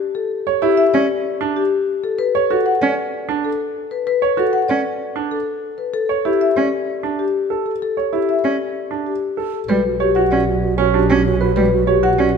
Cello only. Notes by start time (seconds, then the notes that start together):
0.94 C#4
2.82 C#4
4.69 C#4
6.56 C#4
8.44 C#4
9.69 G3
10.31 C#4
11.10 C#4
11.56 G3
12.18 C#4